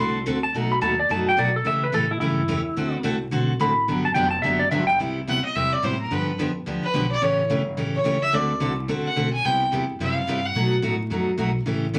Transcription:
Already playing: steel-string acoustic guitar D3, electric slide guitar C6
0.00 upright bass C2, steel-string acoustic guitar A3 C4 F#4 A4
0.26 upright bass D2, steel-string acoustic guitar D3 A3 C4 F#4 A4
0.43 electric slide guitar A5
0.53 upright bass B1, steel-string acoustic guitar B2 F#3 A3 D#4 F#4
0.72 electric slide guitar B5
0.81 upright bass D#2, steel-string acoustic guitar B2 F#3 A3 D#4 F#4, electric slide guitar A5
0.99 electric slide guitar D5
1.09 upright bass F#2, steel-string acoustic guitar B2 F#3 A3 D#4 F#4, electric slide guitar A5
1.29 electric slide guitar G5
1.37 steel-string acoustic guitar B2 F#3 A3 D#4 F#4, upright bass B2, electric slide guitar D5
1.56 electric slide guitar A4
1.65 steel-string acoustic guitar C#3 E3 A3 C#4 G4, upright bass C#3, electric slide guitar E5
1.84 electric slide guitar B4
1.92 upright bass A2, steel-string acoustic guitar C#3 E3 A3 C#4 G4, electric slide guitar A4
2.11 electric slide guitar E4
2.20 upright bass G2, steel-string acoustic guitar C#3 E3 A3 C#4 G4, electric slide guitar E4
2.48 upright bass E2, steel-string acoustic guitar C#3 E3 A3 C#4 G4
2.76 upright bass D2, steel-string acoustic guitar D3 A3 C4 F#4 A4
3.03 upright bass C2, steel-string acoustic guitar D3 A3 C4 F#4 A4
3.31 upright bass B1, steel-string acoustic guitar D3 A3 C4 F#4 A4
3.60 upright bass A1, steel-string acoustic guitar D3 A3 C4 F#4 A4, electric slide guitar B5
3.88 upright bass G1, steel-string acoustic guitar D3 F#3 B3 D4 G4
4.05 electric slide guitar A5
4.14 upright bass F1, steel-string acoustic guitar D3 F#3 B3 D4 G4, electric slide guitar G5
4.31 electric slide guitar A5
4.42 upright bass F#1, steel-string acoustic guitar D3 F#3 B3 D4 G4, electric slide guitar E5
4.59 electric slide guitar D5
4.71 upright bass G1, steel-string acoustic guitar D3 F#3 B3 D4 G4, electric slide guitar E5
4.87 electric slide guitar G5
4.99 upright bass C2, steel-string acoustic guitar C3 G3 B3 E4 G4
5.27 upright bass D2, steel-string acoustic guitar C3 G3 B3 E4 G4, fiddle F#5
5.44 fiddle D#5, muted upright bass stroke
5.55 upright bass E2, steel-string acoustic guitar C3 G3 B3 E4 G4, fiddle E5
5.73 fiddle D5
5.82 upright bass A2, steel-string acoustic guitar C3 G3 B3 E4 G4, fiddle C5
6.00 fiddle A#4
6.11 upright bass G2, steel-string acoustic guitar D3 F3 B3 D4 G4, fiddle B4
6.38 upright bass F2, steel-string acoustic guitar D3 F3 B3 D4 G4
6.66 upright bass D2, steel-string acoustic guitar D3 F3 B3 D4 G4
6.83 fiddle B4, muted upright bass stroke
6.94 upright bass B1, steel-string acoustic guitar D3 F3 B3 D4 G4
7.11 fiddle D5
7.22 upright bass A1, steel-string acoustic guitar C#3 E3 A3 C#4 G4, fiddle C#5
7.50 upright bass G1, steel-string acoustic guitar C#3 E3 A3 C#4 G4
7.77 upright bass A1, steel-string acoustic guitar C#3 E3 A3 C#4 G4
7.95 fiddle C#5
8.04 upright bass C#2, steel-string acoustic guitar C#3 E3 A3 C#4 G4
8.22 fiddle E5
8.32 upright bass D2, steel-string acoustic guitar D3 A3 C4 F#4 A4, fiddle D5
8.60 upright bass C2, steel-string acoustic guitar D3 A3 C4 F#4 A4
8.88 upright bass D2, steel-string acoustic guitar D3 A3 C4 F#4 A4
9.05 fiddle F#5, muted upright bass stroke
9.16 upright bass B1, steel-string acoustic guitar D3 A3 C4 F#4 A4
9.33 fiddle G#5
9.44 upright bass C2, steel-string acoustic guitar C3 G3 B3 E4 G4, fiddle G5
9.72 upright bass E2, steel-string acoustic guitar C3 G3 B3 E4 G4
9.99 upright bass F#2, steel-string acoustic guitar C3 G3 B3 E4 G4, fiddle F5
10.27 upright bass G2, steel-string acoustic guitar C3 G3 B3 E4 G4
10.45 fiddle F#5
10.55 upright bass B2, steel-string acoustic guitar B2 F#3 A3 D#4 F#4
10.82 upright bass A2, steel-string acoustic guitar B2 F#3 A3 D#4 F#4
11.10 upright bass F#2, steel-string acoustic guitar B2 F#3 A3 D#4 F#4
11.38 upright bass B1, steel-string acoustic guitar B2 F#3 A3 D#4 F#4
11.66 upright bass A1, steel-string acoustic guitar C#3 E3 A3 C#4 G4
11.93 upright bass F#1, steel-string acoustic guitar C#3 E3 A3 C#4 G4

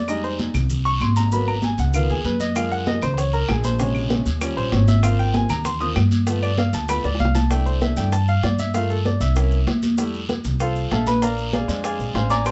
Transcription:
Already playing: upright bass F2
0.08 grand piano G3 G#3 D#4 D#5, high conga, long guiro, claves, maracas
0.24 grand piano C5, high conga, maracas
0.39 high conga, short guiro, maracas
0.54 upright bass C2, high conga, low conga, short guiro, claves, maracas
0.70 high conga, low conga, long guiro, maracas
0.85 grand piano C#6, high conga, maracas
1.00 upright bass G#1, grand piano C6, high conga, short guiro, claves, maracas
1.16 grand piano A#5, high conga, short guiro, maracas
1.32 grand piano F#3 A#3 B3 B5, high conga, long guiro, maracas
1.47 grand piano A#5, high conga, claves, maracas
1.62 grand piano G#5, high conga, short guiro, maracas
1.78 upright bass C#2, grand piano F#5, high conga, short guiro, maracas
1.94 grand piano D#3 F3 B3 F5, high conga, long guiro, claves, maracas
2.09 upright bass D#2, grand piano G#4, high conga, maracas
2.24 upright bass F#2, grand piano B4, high conga, short guiro, maracas
2.40 grand piano D#5, high conga, short guiro, maracas
2.55 grand piano F3 G#3 A#3 F5, high bongo, high conga, long guiro, claves, maracas
2.71 grand piano F#5, maracas
2.86 grand piano D#5, high bongo, high conga, short guiro, maracas
3.02 upright bass C#2, grand piano C5, high conga, low conga, short guiro, claves, maracas
3.14 grand piano C5, long guiro
3.18 grand piano C#5, high bongo, high conga, maracas
3.33 grand piano A#4, maracas
3.49 upright bass A#1, grand piano G#4, high bongo, low bongo, high conga, short guiro, claves, maracas
3.64 grand piano C5, high conga, short guiro, maracas
3.79 grand piano C3 C#3 G#3 C#5, high bongo, high conga, long guiro, maracas
3.95 high conga, claves, maracas
4.10 high bongo, high conga, short guiro, maracas
4.26 upright bass D#2, high bongo, high conga, short guiro, maracas
4.41 grand piano F3 G3 C#4, high bongo, high conga, long guiro, claves, maracas
4.57 upright bass A#1, grand piano C5, high bongo, maracas
4.72 upright bass G#1, grand piano C#5, high bongo, low bongo, high conga, short guiro, maracas
4.88 grand piano E5, high bongo, high conga, short guiro, maracas
5.03 grand piano F3 A#3 C4 F5, high bongo, high conga, long guiro, claves, maracas
5.18 grand piano G5, high conga, maracas
5.34 grand piano G#5, high bongo, high conga, short guiro, maracas
5.49 upright bass D#2, grand piano A#5, high conga, low conga, short guiro, claves, maracas
5.65 grand piano C6, high bongo, high conga, low conga, long guiro, maracas
5.80 grand piano F3 A#3 C4 D#6, high conga, maracas
5.96 upright bass G2, high bongo, low bongo, high conga, short guiro, claves, maracas
6.11 high conga, short guiro, maracas
6.27 grand piano F3 A3 B3, high bongo, high conga, long guiro, maracas
6.42 grand piano D5, claves, maracas
6.58 grand piano F5, high bongo, high conga, short guiro, maracas
6.73 upright bass D2, grand piano A5, high bongo, high conga, short guiro, maracas
6.88 grand piano F3 A3 B3 B5, high bongo, high conga, long guiro, claves, maracas
7.04 upright bass D2, grand piano D5, high bongo, high conga, maracas
7.15 low bongo
7.19 upright bass C2, grand piano F5, high conga, short guiro, maracas
7.25 low bongo
7.35 grand piano A5, low bongo, high conga, short guiro, maracas
7.50 grand piano A3 D4 E4 G5, high bongo, high conga, long guiro, maracas
7.66 grand piano C5, high conga, maracas
7.81 grand piano E5, high bongo, high conga, short guiro, maracas
7.96 upright bass G2, grand piano A3 D4 E4 G5, high conga, low conga, short guiro, maracas
8.12 grand piano A5, high bongo, high conga, long guiro, maracas
8.28 grand piano F5, high conga, maracas
8.43 upright bass G2, grand piano D5, high bongo, low bongo, high conga, short guiro, maracas
8.59 grand piano E5, high conga, short guiro, maracas
8.74 grand piano A3 A#3 F4 F5, high bongo, high conga, long guiro, maracas
8.90 grand piano A4, high conga, maracas
9.05 grand piano D5, high bongo, high conga, short guiro, maracas
9.20 upright bass C2, grand piano E5, high bongo, high conga, short guiro, maracas
9.35 grand piano A#3 C#4 E4, high bongo, high conga, long guiro, maracas
9.51 high bongo, high conga, maracas
9.67 upright bass F2, high bongo, low bongo, high conga, short guiro, maracas
9.82 high bongo, high conga, short guiro, maracas
9.98 grand piano G3 A3 E4, high bongo, high conga, long guiro, maracas
10.14 maracas
10.29 high bongo, high conga, short guiro, maracas
10.44 upright bass C2, high conga, low conga, short guiro, maracas
10.60 grand piano F4 A4 C5 F5, high bongo, high conga, long guiro, maracas
10.76 high conga, maracas
10.91 upright bass A#1, grand piano A4 E5 F5 A5, high bongo, low bongo, high conga, short guiro, maracas
11.07 grand piano B4 B5, high conga, short guiro, maracas
11.22 grand piano A#4 D5 F5 A#5, high bongo, high conga, long guiro, maracas
11.38 high conga, maracas
11.53 grand piano G#4 D5 F5 G#5, high bongo, high conga, short guiro, maracas
11.68 upright bass F2, grand piano G#3 C4 D4, high bongo, high conga, short guiro, maracas
11.84 grand piano G#4 D5 F5 G#5, high bongo, high conga, long guiro, maracas
11.99 upright bass A#1, high bongo, high conga, maracas
12.14 upright bass A1, grand piano C5 F5 G#5 C6, high bongo, low bongo, high conga, short guiro, maracas
12.30 grand piano D5 G#5 A#5 D6, high bongo, high conga, short guiro, maracas
12.45 grand piano G3 B3 C4 C5 G5 A5 C6, high bongo, high conga, long guiro, claves, maracas

